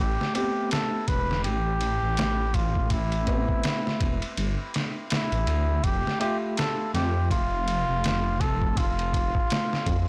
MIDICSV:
0, 0, Header, 1, 5, 480
1, 0, Start_track
1, 0, Key_signature, 0, "minor"
1, 0, Tempo, 731707
1, 1911, Time_signature, 4, 2, 24, 8
1, 6615, End_track
2, 0, Start_track
2, 0, Title_t, "Muted trumpet"
2, 0, Program_c, 0, 59
2, 0, Note_on_c, 0, 67, 91
2, 232, Note_off_c, 0, 67, 0
2, 235, Note_on_c, 0, 67, 86
2, 456, Note_off_c, 0, 67, 0
2, 472, Note_on_c, 0, 69, 93
2, 707, Note_on_c, 0, 71, 93
2, 717, Note_off_c, 0, 69, 0
2, 942, Note_off_c, 0, 71, 0
2, 946, Note_on_c, 0, 67, 100
2, 1671, Note_on_c, 0, 65, 83
2, 1681, Note_off_c, 0, 67, 0
2, 1916, Note_on_c, 0, 64, 83
2, 1926, Note_off_c, 0, 65, 0
2, 2873, Note_off_c, 0, 64, 0
2, 3357, Note_on_c, 0, 64, 87
2, 3831, Note_on_c, 0, 67, 99
2, 3841, Note_off_c, 0, 64, 0
2, 4068, Note_off_c, 0, 67, 0
2, 4072, Note_on_c, 0, 67, 98
2, 4177, Note_off_c, 0, 67, 0
2, 4318, Note_on_c, 0, 69, 99
2, 4538, Note_off_c, 0, 69, 0
2, 4554, Note_on_c, 0, 67, 92
2, 4776, Note_off_c, 0, 67, 0
2, 4796, Note_on_c, 0, 65, 102
2, 5514, Note_on_c, 0, 69, 91
2, 5524, Note_off_c, 0, 65, 0
2, 5761, Note_on_c, 0, 65, 86
2, 5770, Note_off_c, 0, 69, 0
2, 6615, Note_off_c, 0, 65, 0
2, 6615, End_track
3, 0, Start_track
3, 0, Title_t, "Felt piano"
3, 0, Program_c, 1, 0
3, 220, Note_on_c, 1, 57, 83
3, 226, Note_on_c, 1, 59, 78
3, 229, Note_on_c, 1, 60, 74
3, 234, Note_on_c, 1, 67, 96
3, 2122, Note_off_c, 1, 57, 0
3, 2125, Note_off_c, 1, 59, 0
3, 2126, Note_off_c, 1, 60, 0
3, 2129, Note_off_c, 1, 67, 0
3, 2140, Note_on_c, 1, 57, 76
3, 2145, Note_on_c, 1, 59, 72
3, 2150, Note_on_c, 1, 60, 73
3, 2156, Note_on_c, 1, 71, 81
3, 3814, Note_off_c, 1, 57, 0
3, 3816, Note_off_c, 1, 59, 0
3, 3819, Note_off_c, 1, 60, 0
3, 3822, Note_off_c, 1, 71, 0
3, 4060, Note_on_c, 1, 57, 92
3, 4066, Note_on_c, 1, 76, 80
3, 4070, Note_on_c, 1, 65, 84
3, 4077, Note_on_c, 1, 67, 95
3, 5962, Note_off_c, 1, 57, 0
3, 5964, Note_off_c, 1, 76, 0
3, 5967, Note_off_c, 1, 65, 0
3, 5970, Note_off_c, 1, 67, 0
3, 6615, End_track
4, 0, Start_track
4, 0, Title_t, "Detuned saw bass"
4, 0, Program_c, 2, 39
4, 0, Note_on_c, 2, 33, 97
4, 114, Note_off_c, 2, 33, 0
4, 707, Note_on_c, 2, 28, 90
4, 948, Note_on_c, 2, 33, 91
4, 958, Note_off_c, 2, 28, 0
4, 1303, Note_off_c, 2, 33, 0
4, 1327, Note_on_c, 2, 33, 91
4, 2262, Note_off_c, 2, 33, 0
4, 2627, Note_on_c, 2, 28, 80
4, 2753, Note_off_c, 2, 28, 0
4, 2869, Note_on_c, 2, 31, 83
4, 2994, Note_off_c, 2, 31, 0
4, 3488, Note_on_c, 2, 33, 88
4, 3577, Note_off_c, 2, 33, 0
4, 3587, Note_on_c, 2, 38, 94
4, 3805, Note_off_c, 2, 38, 0
4, 3830, Note_on_c, 2, 29, 95
4, 3954, Note_off_c, 2, 29, 0
4, 4551, Note_on_c, 2, 41, 82
4, 4793, Note_on_c, 2, 29, 93
4, 4803, Note_off_c, 2, 41, 0
4, 5146, Note_off_c, 2, 29, 0
4, 5172, Note_on_c, 2, 29, 87
4, 6105, Note_off_c, 2, 29, 0
4, 6470, Note_on_c, 2, 41, 91
4, 6595, Note_off_c, 2, 41, 0
4, 6615, End_track
5, 0, Start_track
5, 0, Title_t, "Drums"
5, 139, Note_on_c, 9, 38, 39
5, 205, Note_off_c, 9, 38, 0
5, 229, Note_on_c, 9, 51, 60
5, 295, Note_off_c, 9, 51, 0
5, 467, Note_on_c, 9, 51, 79
5, 478, Note_on_c, 9, 38, 103
5, 533, Note_off_c, 9, 51, 0
5, 543, Note_off_c, 9, 38, 0
5, 707, Note_on_c, 9, 36, 91
5, 707, Note_on_c, 9, 51, 69
5, 772, Note_off_c, 9, 51, 0
5, 773, Note_off_c, 9, 36, 0
5, 859, Note_on_c, 9, 38, 36
5, 925, Note_off_c, 9, 38, 0
5, 946, Note_on_c, 9, 51, 57
5, 1012, Note_off_c, 9, 51, 0
5, 1185, Note_on_c, 9, 51, 65
5, 1251, Note_off_c, 9, 51, 0
5, 1425, Note_on_c, 9, 51, 79
5, 1436, Note_on_c, 9, 38, 111
5, 1491, Note_off_c, 9, 51, 0
5, 1501, Note_off_c, 9, 38, 0
5, 1666, Note_on_c, 9, 36, 84
5, 1666, Note_on_c, 9, 51, 63
5, 1732, Note_off_c, 9, 36, 0
5, 1732, Note_off_c, 9, 51, 0
5, 1807, Note_on_c, 9, 36, 85
5, 1872, Note_off_c, 9, 36, 0
5, 1903, Note_on_c, 9, 51, 86
5, 1905, Note_on_c, 9, 36, 97
5, 1969, Note_off_c, 9, 51, 0
5, 1971, Note_off_c, 9, 36, 0
5, 2046, Note_on_c, 9, 51, 38
5, 2112, Note_off_c, 9, 51, 0
5, 2144, Note_on_c, 9, 51, 60
5, 2146, Note_on_c, 9, 36, 84
5, 2210, Note_off_c, 9, 51, 0
5, 2212, Note_off_c, 9, 36, 0
5, 2286, Note_on_c, 9, 36, 91
5, 2352, Note_off_c, 9, 36, 0
5, 2384, Note_on_c, 9, 51, 79
5, 2395, Note_on_c, 9, 38, 109
5, 2450, Note_off_c, 9, 51, 0
5, 2461, Note_off_c, 9, 38, 0
5, 2539, Note_on_c, 9, 38, 39
5, 2605, Note_off_c, 9, 38, 0
5, 2627, Note_on_c, 9, 36, 86
5, 2627, Note_on_c, 9, 51, 62
5, 2693, Note_off_c, 9, 36, 0
5, 2693, Note_off_c, 9, 51, 0
5, 2769, Note_on_c, 9, 51, 42
5, 2834, Note_off_c, 9, 51, 0
5, 2870, Note_on_c, 9, 51, 78
5, 2935, Note_off_c, 9, 51, 0
5, 3111, Note_on_c, 9, 51, 64
5, 3121, Note_on_c, 9, 38, 51
5, 3176, Note_off_c, 9, 51, 0
5, 3187, Note_off_c, 9, 38, 0
5, 3348, Note_on_c, 9, 51, 82
5, 3359, Note_on_c, 9, 38, 114
5, 3414, Note_off_c, 9, 51, 0
5, 3424, Note_off_c, 9, 38, 0
5, 3491, Note_on_c, 9, 51, 40
5, 3557, Note_off_c, 9, 51, 0
5, 3589, Note_on_c, 9, 51, 60
5, 3655, Note_off_c, 9, 51, 0
5, 3829, Note_on_c, 9, 36, 99
5, 3829, Note_on_c, 9, 51, 75
5, 3894, Note_off_c, 9, 51, 0
5, 3895, Note_off_c, 9, 36, 0
5, 3984, Note_on_c, 9, 38, 39
5, 4049, Note_off_c, 9, 38, 0
5, 4072, Note_on_c, 9, 51, 61
5, 4137, Note_off_c, 9, 51, 0
5, 4313, Note_on_c, 9, 51, 79
5, 4323, Note_on_c, 9, 38, 104
5, 4378, Note_off_c, 9, 51, 0
5, 4389, Note_off_c, 9, 38, 0
5, 4556, Note_on_c, 9, 51, 65
5, 4567, Note_on_c, 9, 38, 35
5, 4622, Note_off_c, 9, 51, 0
5, 4632, Note_off_c, 9, 38, 0
5, 4793, Note_on_c, 9, 36, 106
5, 4795, Note_on_c, 9, 51, 86
5, 4858, Note_off_c, 9, 36, 0
5, 4861, Note_off_c, 9, 51, 0
5, 5036, Note_on_c, 9, 51, 70
5, 5101, Note_off_c, 9, 51, 0
5, 5275, Note_on_c, 9, 51, 85
5, 5285, Note_on_c, 9, 38, 113
5, 5340, Note_off_c, 9, 51, 0
5, 5351, Note_off_c, 9, 38, 0
5, 5512, Note_on_c, 9, 36, 85
5, 5514, Note_on_c, 9, 51, 62
5, 5578, Note_off_c, 9, 36, 0
5, 5580, Note_off_c, 9, 51, 0
5, 5653, Note_on_c, 9, 36, 83
5, 5718, Note_off_c, 9, 36, 0
5, 5752, Note_on_c, 9, 36, 100
5, 5753, Note_on_c, 9, 51, 83
5, 5818, Note_off_c, 9, 36, 0
5, 5819, Note_off_c, 9, 51, 0
5, 5897, Note_on_c, 9, 51, 41
5, 5963, Note_off_c, 9, 51, 0
5, 5992, Note_on_c, 9, 36, 85
5, 5996, Note_on_c, 9, 51, 64
5, 6057, Note_off_c, 9, 36, 0
5, 6062, Note_off_c, 9, 51, 0
5, 6132, Note_on_c, 9, 36, 83
5, 6198, Note_off_c, 9, 36, 0
5, 6234, Note_on_c, 9, 51, 79
5, 6245, Note_on_c, 9, 38, 102
5, 6300, Note_off_c, 9, 51, 0
5, 6311, Note_off_c, 9, 38, 0
5, 6383, Note_on_c, 9, 38, 39
5, 6449, Note_off_c, 9, 38, 0
5, 6471, Note_on_c, 9, 36, 89
5, 6471, Note_on_c, 9, 51, 65
5, 6536, Note_off_c, 9, 36, 0
5, 6537, Note_off_c, 9, 51, 0
5, 6615, End_track
0, 0, End_of_file